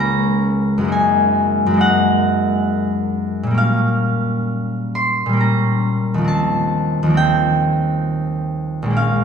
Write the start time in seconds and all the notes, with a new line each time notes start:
Already playing: C#2 G#3 A#3 C#4 E5 B5
0.00 A#5
0.78 F#2 G#3
0.85 A#3 D#4
0.92 G#5
1.66 F#2
1.71 G#3 A#3
1.77 D#4 F#5
3.43 A#2 G3
3.51 A#3 C#4
3.58 F5
4.95 C6
5.26 A#2 G3
5.33 A#3 C#4
5.40 A#5
6.14 D#2 F3
6.21 A#3 C4
6.28 A5
7.03 D#2 F3
7.10 A#3 C4
7.17 G5
8.83 A#1 G#3
8.90 A#3 C#4
8.97 F5